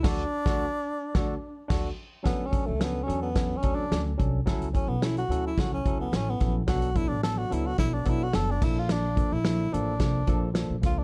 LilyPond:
<<
  \new Staff \with { instrumentName = "Tenor saxophone" } { \time 4/4 \key d \major \tempo 4 = 108 d'2. r4 | \tuplet 3/2 { b8 cis'8 a8 b8 cis'8 b8~ b8 cis'8 d'8~ } d'16 r8. | r8 cis'16 b16 e'16 fis'8 e'16 fis'16 cis'8 b16 cis'16 b8 r16 | fis'8 e'16 d'16 a'16 fis'16 e'16 fis'16 e'16 d'16 e'16 fis'16 a'16 d'16 e'16 f'16 |
d'8. e'8. d'4. r8 f'16 d'16 | }
  \new Staff \with { instrumentName = "Tine electric piano" } { \time 4/4 \key d \major <d' fis' a'>8 r16 <d' fis' a'>8 r8. <d' fis' a'>8 r8 <d' fis' a'>8 r8 | <fis cis' d' a'>16 r16 <fis cis' d' a'>16 r16 <fis cis' d' a'>16 r16 <fis cis' d' a'>16 r16 <fis cis' d' a'>16 r16 <fis cis' d' a'>16 r16 <fis cis' d' a'>16 r16 <fis cis' d' a'>16 r16 | <fis cis' e' a'>16 r16 <fis cis' e' a'>16 r16 <fis cis' e' a'>16 r16 <fis cis' e' a'>16 r16 <fis cis' e' a'>16 r16 <fis cis' e' a'>16 r16 <fis cis' e' a'>16 r16 <fis cis' e' a'>16 r16 | <fis b d' a'>16 r16 <fis b d' a'>16 r16 <fis b d' a'>16 r16 <fis b d' a'>16 r16 <fis b d' a'>16 r16 <fis b d' a'>16 r16 <fis b d' a'>16 r16 <f bes d' a'>8~ |
<f bes d' a'>16 r16 <f bes d' a'>16 r16 <f bes d' a'>16 r16 <f bes d' a'>16 r16 <f bes d' a'>16 r16 <f bes d' a'>16 r16 <f bes d' a'>16 r16 <f bes d' a'>16 r16 | }
  \new Staff \with { instrumentName = "Upright bass" } { \clef bass \time 4/4 \key d \major d,8 r16 d,8 r8. d,8 r8 d,8 r8 | d,8. cis,8. e,4 d,8 d,8 c,8 | cis,8. b,,8. d,8 cis,8 cis,8 a,,8 bes,,8 | b,,8. a,,8. cis,8 b,,8 b,,8 fis,,8 bes,,8~ |
bes,,8. bes,,8. a,,8 c,8 bes,,8. bes,,16 cis,8 | }
  \new DrumStaff \with { instrumentName = "Drums" } \drummode { \time 4/4 <cymc bd sn>8. <bd sn>16 r4 <bd sn>4 <cymc bd sn>4 | <hh bd sn>8 <hh bd>8 <hh sn>8 hh8 <hh bd sn>8 <hh bd>8 <hh sn>8 <hh bd>8 | <hh bd sn>16 hh16 <hh bd>8 <hh sn>16 hh16 hh8 <hh bd sn>8 <hh bd>8 <hh sn>8 <hh bd sn>8 | <hh bd sn>16 hh16 <hh bd>8 <hh sn>8 hh8 <hh bd sn>8 <hh bd>8 <hh sn>8 <cymc bd sn>8 |
<hh sn>8 <hh bd>8 <hh sn>8 hh8 <hh bd sn>8 <hh bd>8 <hh sn>8 <hh bd sn>8 | }
>>